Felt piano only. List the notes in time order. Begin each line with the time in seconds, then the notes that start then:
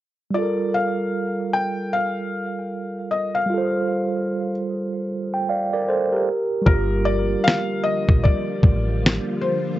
0.34 D5
0.74 F5
1.53 G5
1.93 F5
3.11 D#5
3.35 F5
6.66 A#4
7.05 D5
7.44 F5
7.84 D#5
8.24 D5
9.41 C5